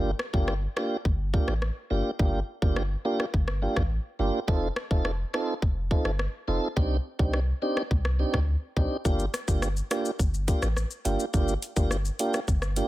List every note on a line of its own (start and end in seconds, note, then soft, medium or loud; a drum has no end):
0.00 0.13 G1 loud
0.00 0.11 A#3 medium
0.00 0.11 D4 medium
0.00 0.11 F4 medium
0.00 0.11 G4 loud
0.19 cross-stick loud
0.33 0.67 G1 medium
0.33 0.54 A#3 medium
0.33 0.54 D4 medium
0.33 0.54 F4 medium
0.33 0.54 G4 medium
0.33 kick loud
0.48 cross-stick medium
0.76 0.97 A#3 medium
0.76 0.97 D4 medium
0.76 0.97 F4 medium
0.76 0.97 G4 medium
0.76 cross-stick loud
1.05 1.38 G1 loud
1.05 kick medium
1.33 1.54 A#3 medium
1.33 1.54 D4 medium
1.33 1.54 F4 medium
1.33 1.54 G4 medium
1.33 kick medium
1.48 1.70 A1 medium
1.48 cross-stick medium
1.62 cross-stick medium
1.90 2.02 G1 medium
1.90 2.11 A#3 medium
1.90 2.11 D4 medium
1.90 2.11 F4 medium
1.90 2.11 G4 medium
2.19 2.42 G1 loud
2.19 2.40 A#3 medium
2.19 2.40 D4 medium
2.19 2.40 F4 medium
2.19 2.40 G4 loud
2.19 kick loud
2.62 2.96 G1 medium
2.62 2.83 A#3 medium
2.62 2.83 D4 medium
2.62 2.83 F4 medium
2.62 2.83 G4 medium
2.62 kick medium
2.76 cross-stick medium
3.05 3.25 A#3 medium
3.05 3.25 D4 medium
3.05 3.26 F4 medium
3.05 3.26 G4 medium
3.20 cross-stick medium
3.34 3.67 G1 loud
3.34 kick medium
3.48 cross-stick medium
3.62 3.82 A#3 medium
3.62 3.83 D4 medium
3.62 3.83 F4 medium
3.62 3.83 G4 medium
3.76 3.99 A1 medium
3.76 kick medium
3.76 cross-stick medium
4.19 4.30 G1 medium
4.19 4.40 A#3 medium
4.19 4.40 D4 medium
4.19 4.40 F4 medium
4.19 4.40 G4 medium
4.48 4.70 F1 loud
4.48 4.68 C4 medium
4.48 4.68 D#4 medium
4.48 4.68 F4 medium
4.48 4.68 A4 loud
4.48 kick loud
4.76 cross-stick loud
4.91 5.24 F1 medium
4.91 5.11 C4 medium
4.91 5.11 D#4 medium
4.91 5.11 F4 medium
4.91 5.11 A4 medium
4.91 kick loud
5.05 cross-stick medium
5.34 5.54 C4 medium
5.34 5.54 D#4 medium
5.34 5.54 F4 medium
5.34 5.54 A4 medium
5.34 cross-stick loud
5.62 5.96 F1 loud
5.62 kick medium
5.91 6.11 C4 medium
5.91 6.11 D#4 medium
5.91 6.11 F4 medium
5.91 6.11 A4 medium
5.91 kick medium
6.05 6.27 G1 medium
6.05 cross-stick medium
6.19 cross-stick medium
6.48 6.59 F1 medium
6.48 6.68 C4 medium
6.48 6.68 D#4 medium
6.48 6.68 F4 medium
6.48 6.68 A4 medium
6.76 6.99 C2 loud
6.76 6.97 C4 medium
6.76 6.97 D4 medium
6.76 6.97 D#4 medium
6.76 6.97 G4 loud
6.76 kick loud
7.19 7.53 C2 medium
7.19 7.40 C4 medium
7.19 7.40 D4 medium
7.19 7.40 D#4 medium
7.19 7.40 G4 medium
7.19 kick medium
7.34 cross-stick medium
7.62 7.82 C4 medium
7.62 7.82 D4 medium
7.62 7.83 D#4 medium
7.62 7.83 G4 medium
7.77 cross-stick medium
7.91 8.24 C2 loud
7.91 kick medium
8.05 cross-stick medium
8.19 8.40 C4 medium
8.19 8.40 D4 medium
8.19 8.40 D#4 medium
8.19 8.40 G4 medium
8.34 8.56 D2 medium
8.34 kick medium
8.34 cross-stick medium
8.77 8.88 C2 medium
8.77 8.97 C4 medium
8.77 8.97 D4 medium
8.77 8.97 D#4 medium
8.77 8.97 G4 medium
8.77 kick loud
9.05 9.27 G1 loud
9.05 9.25 A#3 medium
9.05 9.25 D4 medium
9.05 9.26 F4 medium
9.05 9.26 G4 loud
9.05 kick loud
9.05 shaker medium
9.19 shaker soft
9.34 cross-stick loud
9.34 closed hi-hat medium
9.34 shaker medium
9.48 9.81 G1 medium
9.48 9.68 A#3 medium
9.48 9.68 D4 medium
9.48 9.68 F4 medium
9.48 9.68 G4 medium
9.48 kick medium
9.48 shaker medium
9.62 cross-stick medium
9.62 shaker medium
9.77 shaker soft
9.91 10.11 A#3 medium
9.91 10.11 D4 medium
9.91 10.11 F4 medium
9.91 10.11 G4 medium
9.91 cross-stick loud
9.91 closed hi-hat medium
9.91 shaker medium
10.05 shaker medium
10.19 10.53 G1 loud
10.19 kick medium
10.19 shaker medium
10.34 shaker soft
10.48 10.68 A#3 medium
10.48 10.68 D4 medium
10.48 10.68 F4 medium
10.48 10.68 G4 medium
10.48 kick medium
10.48 closed hi-hat medium
10.48 shaker medium
10.62 10.85 A1 medium
10.62 cross-stick medium
10.62 shaker medium
10.77 cross-stick medium
10.77 shaker medium
10.91 shaker medium
11.05 11.16 G1 medium
11.05 11.25 A#3 medium
11.05 11.25 D4 medium
11.05 11.25 F4 medium
11.05 11.25 G4 medium
11.05 closed hi-hat medium
11.05 shaker soft
11.20 shaker medium
11.34 11.56 G1 loud
11.34 11.54 A#3 medium
11.34 11.54 D4 medium
11.34 11.54 F4 medium
11.34 11.54 G4 loud
11.34 kick loud
11.34 shaker medium
11.48 shaker soft
11.62 closed hi-hat medium
11.62 shaker medium
11.76 12.10 G1 medium
11.76 11.97 A#3 medium
11.76 11.97 D4 medium
11.76 11.97 F4 medium
11.76 11.97 G4 medium
11.76 kick loud
11.76 shaker medium
11.91 cross-stick medium
11.91 shaker medium
12.05 shaker soft
12.19 12.40 A#3 medium
12.19 12.40 D4 medium
12.19 12.40 F4 medium
12.19 12.40 G4 medium
12.19 closed hi-hat medium
12.19 shaker medium
12.34 cross-stick medium
12.34 shaker medium
12.48 12.81 G1 loud
12.48 kick medium
12.48 shaker medium
12.62 cross-stick medium
12.62 shaker soft
12.76 12.88 A#3 medium
12.76 12.88 D4 medium
12.76 12.88 F4 medium
12.76 12.88 G4 medium
12.76 closed hi-hat medium
12.76 shaker medium